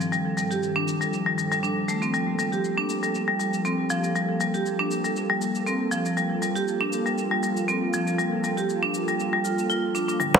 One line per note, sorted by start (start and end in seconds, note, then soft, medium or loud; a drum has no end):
0.00 2.10 G2 medium
0.00 2.10 D#3 medium
0.00 10.16 F3 medium
0.00 10.16 A4 medium
0.00 shaker medium
0.12 0.19 G3 medium
0.12 shaker soft
0.37 0.44 G3 medium
0.37 shaker medium
0.51 0.61 G4 medium
0.51 shaker soft
0.63 shaker soft
0.76 0.86 D4 loud
0.88 shaker medium
1.01 1.12 G3 medium
1.01 shaker medium
1.13 shaker soft
1.26 1.37 G3 medium
1.38 1.50 G3 medium
1.38 shaker loud
1.51 1.62 G3 medium
1.51 shaker soft
1.63 1.75 D4 medium
1.63 shaker soft
1.88 1.96 A3 medium
1.88 shaker medium
2.02 2.13 C4 medium
2.02 shaker medium
2.13 2.21 G3 medium
2.13 10.16 A#3 medium
2.13 6.13 G4 medium
2.13 shaker soft
2.39 2.46 G3 medium
2.39 shaker medium
2.52 2.63 G4 medium
2.52 shaker soft
2.64 shaker soft
2.77 2.88 D4 loud
2.90 shaker medium
3.03 3.14 G3 medium
3.03 shaker medium
3.15 shaker soft
3.28 3.38 G3 medium
3.40 3.47 G3 medium
3.40 shaker medium
3.54 shaker soft
3.65 3.72 C4 medium
3.65 shaker soft
3.90 4.02 F3 medium
3.90 shaker medium
4.04 shaker medium
4.15 4.23 G3 medium
4.15 shaker soft
4.40 4.48 G3 medium
4.40 shaker medium
4.54 4.65 G4 medium
4.54 shaker soft
4.66 shaker soft
4.79 4.90 D4 loud
4.91 shaker medium
5.05 5.16 G3 medium
5.05 shaker soft
5.16 shaker soft
5.30 5.40 G3 loud
5.41 5.49 G3 medium
5.41 shaker medium
5.55 shaker soft
5.67 5.74 C4 medium
5.67 shaker soft
5.92 6.04 F3 medium
5.92 shaker medium
6.06 shaker soft
6.17 6.24 G3 medium
6.17 10.16 F4 medium
6.17 shaker soft
6.42 6.49 G3 medium
6.42 shaker medium
6.55 6.66 G4 medium
6.55 shaker soft
6.68 shaker soft
6.81 6.91 D4 loud
6.93 shaker medium
7.06 7.17 G3 medium
7.06 shaker soft
7.18 shaker soft
7.31 7.42 G3 medium
7.43 7.50 G3 medium
7.43 shaker medium
7.57 shaker soft
7.68 7.75 C4 medium
7.68 shaker soft
7.93 8.06 F3 loud
7.93 shaker medium
8.07 shaker soft
8.19 8.26 G3 medium
8.19 shaker soft
8.44 8.51 G3 medium
8.44 shaker medium
8.57 8.68 G4 medium
8.57 shaker soft
8.69 shaker soft
8.83 8.93 D4 medium
8.94 shaker medium
9.08 9.19 G3 medium
9.08 shaker soft
9.20 shaker soft
9.33 9.43 G3 medium
9.45 9.57 F4 medium
9.45 shaker medium
9.59 shaker soft
9.70 9.83 F4 loud
9.70 shaker soft
9.95 10.07 D4 medium
9.95 shaker medium
10.08 10.19 D4 medium
10.08 shaker soft
10.20 10.39 G1 loud
10.20 10.39 D#3 medium
10.20 10.39 F3 medium
10.20 10.27 G3 medium
10.20 10.39 A4 medium
10.20 mid tom soft
10.20 riser medium
10.20 shaker soft
10.34 low bongo medium